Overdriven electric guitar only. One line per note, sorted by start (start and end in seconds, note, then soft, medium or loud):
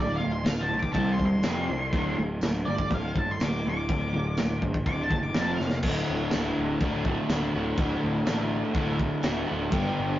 0.00 0.19 D2 medium
0.00 0.20 A2 loud
0.20 0.43 D2 medium
0.20 0.44 A2 medium
0.44 0.67 D2 medium
0.44 0.68 A2 medium
0.69 0.92 D2 medium
0.69 0.92 A2 medium
0.94 1.18 C3 loud
0.94 1.18 G3 loud
0.94 1.19 C4 loud
1.19 1.42 C3 medium
1.19 1.42 G3 medium
1.44 1.68 F2 loud
1.44 1.68 C3 loud
1.44 1.68 F3 loud
1.69 1.91 F2 medium
1.69 1.92 C3 medium
1.93 2.16 D2 loud
1.93 2.17 A2 medium
1.93 2.17 D3 loud
2.19 2.40 D2 medium
2.19 2.41 A2 medium
2.43 2.65 D2 medium
2.43 2.65 A2 loud
2.66 2.89 D2 medium
2.66 2.89 A2 medium
2.90 3.13 D2 medium
2.90 3.13 A2 loud
3.16 3.38 D2 medium
3.16 3.38 A2 medium
3.41 3.63 D2 medium
3.41 3.63 A2 medium
3.65 3.87 D2 medium
3.65 3.87 A2 medium
3.89 4.11 D2 medium
3.89 4.11 A2 medium
4.13 4.35 D2 medium
4.13 4.36 A2 medium
4.38 4.60 D2 medium
4.38 4.60 A2 medium
4.62 4.84 D2 medium
4.62 4.84 A2 medium
4.86 5.09 D2 medium
4.86 5.08 A2 medium
5.12 5.33 D2 medium
5.12 5.34 A2 medium
5.35 5.58 F2 medium
5.35 5.59 C3 loud
5.35 5.59 F3 loud
5.60 5.82 F2 medium
5.60 5.82 C3 medium
5.84 6.80 D2 medium
5.84 6.31 A2 loud
5.84 6.33 D3 loud
5.84 6.34 A3 medium
5.84 6.35 F#4 loud
6.33 6.80 A2 medium
6.33 6.82 D3 medium
6.33 6.82 A3 loud
6.33 6.82 F#4 loud
6.80 7.30 D2 loud
6.80 7.28 A2 loud
6.80 7.07 D3 loud
6.80 7.06 A3 loud
6.80 7.05 F#4 loud
7.06 7.29 D3 medium
7.06 7.31 A3 medium
7.06 7.31 F#4 medium
7.29 7.77 A2 medium
7.29 7.56 D3 medium
7.29 7.55 A3 medium
7.29 7.53 F#4 medium
7.55 7.77 D3 medium
7.55 7.78 A3 medium
7.55 7.79 F#4 medium
7.77 8.51 D2 medium
7.77 8.24 A2 loud
7.77 8.25 D3 loud
7.77 8.27 A3 loud
7.77 8.27 F#4 loud
8.25 8.73 A2 medium
8.25 8.74 D3 medium
8.25 8.74 A3 loud
8.25 8.75 F#4 medium
8.73 9.23 D2 loud
8.73 9.20 A2 loud
8.73 8.99 D3 loud
8.73 8.97 A3 loud
8.73 8.96 F#4 loud
8.97 9.22 D3 medium
8.97 9.23 A3 medium
8.97 9.24 F#4 medium
9.22 9.70 A2 medium
9.22 9.47 D3 medium
9.22 9.46 A3 medium
9.22 9.45 F#4 medium
9.46 9.69 D3 medium
9.46 9.71 A3 medium
9.46 9.70 F#4 medium
9.70 10.19 G2 loud
9.70 10.19 D3 loud
9.70 10.18 G3 loud
9.70 10.18 B3 loud
9.70 10.19 D4 loud
9.70 10.19 G4 loud